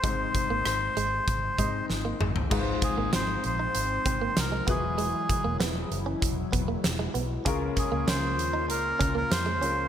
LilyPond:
<<
  \new Staff \with { instrumentName = "Melodica" } { \time 4/4 \key aes \mixolydian \tempo 4 = 97 c''2. r4 | r8 aes'8 c''8 c''4. bes'8 gis'8~ | gis'4 r2. | r8 aes'8 c''4 bes'8. bes'16 c''4 | }
  \new Staff \with { instrumentName = "Grand piano" } { \time 4/4 \key aes \mixolydian <aes c' ees' c''>2~ <aes c' ees' c''>8 <aes c' ees' ees''>4. | <aes ees' f' ces'' c''>2.~ <aes ees' f' ces'' c''>8 <gis e' fis' b'>8~ | <gis e' fis' b'>2.~ <gis e' fis' b'>8 r8 | <aes des' f' bes'>2.~ <aes des' f' bes'>8 <aes des' f' bes'>8 | }
  \new Staff \with { instrumentName = "Grand piano" } { \clef bass \time 4/4 \key aes \mixolydian aes,4. r2 r8 | aes,4. r2 e8~ | e4 r2. | des4. r2 r8 | }
  \new Staff \with { instrumentName = "Clean electric guitar" } { \time 4/4 \key aes \mixolydian aes16 r8 bes16 r8 aes16 r8. aes16 r8 bes16 aes16 r16 | aes16 r8 bes16 c'16 r8 ees'16 r8 c'16 bes16 r16 aes16 b16 r16 | gis16 r8 bes16 b16 r8 des'16 r8 b16 bes16 r16 gis16 b16 r16 | des'16 r8 bes16 des'16 r8 ees'16 r8 des'16 bes16 r16 aes16 des'16 r16 | }
  \new Staff \with { instrumentName = "Analog synth pad" } { \time 4/4 \key aes \mixolydian << { r1 | <f c'>2.~ <f c'>8 <fis e'>8~ | <fis e'>1 | <des f'>1 | } \\ { r1 | aes1~ | aes1 | bes1 | } >> }
  \new Staff \with { instrumentName = "Fingered electric bass" } { \clef bass \time 4/4 \key aes \mixolydian aes,,8 r16 aes,,16 aes,,8 aes,,8 aes,,8 aes,8 aes,,8 aes,,8 | aes,,8 r16 aes,,16 aes,,8 bes,,8 aes,,8 aes,,8 c,8 e,,8~ | e,,8 r16 e,,16 e,,8 fis,,8 e,,8 e,,8 e,,8 b,,8 | des,8 r16 des,16 des,8 ees,8 des,8 des,8 f,8 des,8 | }
  \new DrumStaff \with { instrumentName = "Drums" } \drummode { \time 4/4 <hh bd>8 <hh bd>8 <hh ss>8 hh8 <hh bd>8 <hh bd>8 sn8 toml16 tomfh16 | <cymc bd>8 <hh bd>8 <hh sn>8 hh8 hh8 <hh bd>8 <hh sn>8 <hh bd>8 | hh8 <hh bd>8 <hh sn>8 hh8 <hh bd>8 <hh bd>8 <hh sn>8 hh8 | <hh bd>8 <hh bd>8 <hh sn>8 hh8 hh8 <hh bd>8 <hh sn>8 hh8 | }
>>